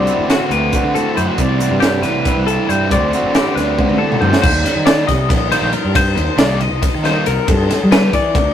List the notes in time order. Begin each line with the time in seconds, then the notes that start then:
Already playing: D3 A3 C4 D5
0.05 A3 C4 F#4, closed hi-hat
0.10 E4
0.18 A1
0.27 D3 A3 C4 F#4, snare, closed hi-hat
0.50 D2 A3 C4 F#4 B4, closed hi-hat
0.71 D3 A3 C4 F#4, kick, closed hi-hat
0.83 D3
0.93 A2 D3 A3 C4 F#4 A4, closed hi-hat
1.15 F#2 D3 A3 C4 E4 F#4 C5, closed hi-hat
1.26 F#4
1.37 C2 C3 E3 G3 C4 E4 D5, kick, closed hi-hat
1.48 A3
1.60 G3 C4 E4 F#4, closed hi-hat
1.70 G2
1.80 C3 E3 G3 C4 D4 G4, snare, closed hi-hat
1.84 E4
2.02 A1 E3 C4 E4 B4, snare, closed hi-hat
2.07 G3
2.25 E3 G3 C4 E4, kick, closed hi-hat
2.36 C2
2.46 G2 C3 E3 G3 C4 E4 A4, closed hi-hat
2.67 G2 E3 G3 C4 D4 E4 C5, closed hi-hat
2.89 D2 D3 A3 C4 F#4 D5, kick, closed hi-hat
3.12 A3 C4 F#4, closed hi-hat
3.23 A1
3.33 D3 A3 C4 E4 F#4 G4, snare, closed hi-hat
3.55 D2 G3 A3 C4 F#4 B4, snare, closed hi-hat
3.76 D3 A3 C4 F#4, kick, high tom
3.88 D3, high tom
3.98 A2 A3 C4 F#4 A4
4.03 D3
4.12 mid tom
4.20 G2 D3 A3 C4 F#4 G4 C5, floor tom
4.33 snare
4.42 D#2 C5, muted overdriven electric guitar stroke, kick, crash
4.64 muted overdriven electric guitar stroke, snare, ride
4.76 D#3
4.85 D#3 G3 A#3 D#4 D5, snare, ride
5.07 C3 D#5, muted overdriven electric guitar stroke, kick, snare, ride
5.28 A#1, muted overdriven electric guitar stroke, kick, snare, ride
5.50 D#3 G3 A#3 D#4 C5, ride
5.62 A#1
5.72 A#4, muted overdriven electric guitar stroke, ride
5.85 G2
5.94 C5, muted overdriven electric guitar stroke, kick, ride
6.15 D#2, muted overdriven electric guitar stroke, ride
6.37 C2 D#3 G3 A#3 D#4 D5, snare, ride
6.60 D#5, muted overdriven electric guitar stroke, ride
6.71 C2
6.82 muted overdriven electric guitar stroke, kick, ride
6.95 D#3
7.03 D#3 G3 A#3 D#4 C5, snare, ride
7.26 C2 A#4, muted overdriven electric guitar stroke, ride
7.47 G2 A4, muted overdriven electric guitar stroke, kick, ride
7.69 muted overdriven electric guitar stroke, snare, ride
7.83 G3
7.91 D3 G3 B3 D4 B4, snare, ride
8.13 E3 D5, muted overdriven electric guitar stroke, kick, ride
8.34 D2, muted overdriven electric guitar stroke, kick, ride